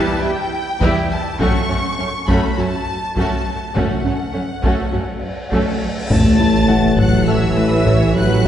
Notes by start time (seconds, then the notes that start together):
Already playing: E3 G3 D4 E4 G4 B4 D5 A5 F#6
0.22 E2 G3 E4 G4 G5
0.81 E2 E3 G3 E4 G4 B4, taiko
1.11 A5
1.39 F#2 F#3 A3 C#4 F#4 A4 C#6, taiko
1.69 F#2 A3 C#4 F#4
1.98 F#2 A3 C#4
2.27 F#2 F#3 A3 C#4 F#4 A4 B5, taiko
2.57 F#2 A3 C#4 F#4 A5
2.87 A5
3.16 F#2 F#3 A3 C#4 F#4 A4 A5, taiko
3.75 F#2 F#3 A3 C#4 F#4 A4 F#5, taiko, cymbal swell
4.04 F#2 A3 C#4 F#4
4.34 F#2 A3 C#4
4.63 F#2 F#3 A3 C#4 F#4 A4, taiko
4.93 F#2 A3 C#4 F#4
5.51 F#2 F#3 A3 C#4 F#4 A4, taiko
6.10 A1 A2 E3 A3 C#4 A5 A6, taiko, sub drop
6.39 A3 E4
6.68 A3 E4 F#5
6.98 A2 F#3 A3 F#5 F#6, taiko
7.27 A2 E3 A4 C#5 E5 E6
7.57 A3 B4
7.86 A2 A3 C#5, taiko
8.16 A2 F#3 B4 F#5 F#6